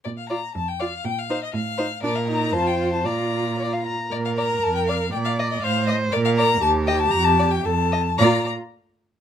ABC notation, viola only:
X:1
M:2/4
L:1/8
Q:1/4=118
K:Bb
V:1 name="Viola"
z F z F | z E z E | D E F2 | F3 z |
B4 | d2 c2 | B2 G2- | G2 A z |
F z3 |]